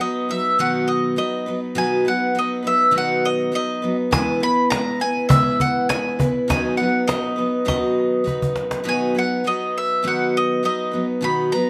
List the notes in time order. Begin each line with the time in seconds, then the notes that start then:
0.00 F#3 B3 D#4 B4 D#5
0.29 F#3 B3 D#4 B4 E5
0.58 B2 D#3 F#3 B3 D#4 B4 F#5
0.88 D#5
1.16 F#3 B3 D#4 B4 D#5
1.46 F#3 B3 D#4 B4
1.75 B2 D#3 F#3 B3 D#4 B4 G#5
2.05 F#3 B3 D#4 B4 F#5
2.35 F#3 B3 D#4 B4 D#5
2.63 F#3 B3 D#4 B4
2.67 E5
2.91 B2 D#3 F#3 B3 D#4 B4
2.98 F#5
3.25 D#5
3.51 F#3 B3 D#4 B4 D#5
3.82 F#3 B3 D#4 B4
4.11 E3 G#3 B3 E4 B4 G#5, cajon bass, cajon slap
4.40 B3 E4 B4 B5, cajon slap
4.70 G#3 B3 E4 B4 A#5, cajon slap
5.00 B3 E4 B4 G#5
5.17 cajon slap
5.29 E3 G#3 B3 E4 B4 E5, cajon bass
5.45 cajon slap
5.60 F#5, cajon bass
5.89 G#3 B3 E4 B4 G#5, cajon slap
6.19 B3 E4 B4, cajon bass
6.48 B2 D#3 F#3 B3 D#4 B4 G#5, cajon bass, cajon slap
6.77 F#3 B3 D#4 B4 F#5, cajon slap
7.08 F#3 B3 D#4 B4 D#5, cajon slap
7.36 F#3 B3 D#4 B4, cajon slap
7.65 B2 D#3 F#3 B3 D#4 B4 D#5, cajon bass, cajon slap
7.83 cajon slap
8.24 F#3 B3 D#4 B4, cajon bass
8.42 cajon bass
8.56 cajon slap
8.71 cajon slap
8.84 B2 D#3 F#3 B3 D#4 B4
8.89 G#5
9.15 F#3 B3 D#4 B4 F#5
9.44 F#3 B3 D#4 B4 D#5
9.78 E5
10.03 B2 D#3 F#3 B3 D#4 B4
10.08 F#5
10.37 D#5
10.63 F#3 B3 D#4 B4 D#5
10.91 F#3 B3 D#4 B4
11.21 B2 D#3 F#3 B3 D#4 B4 B5
11.52 F#3 B3 D#4 B4 A#5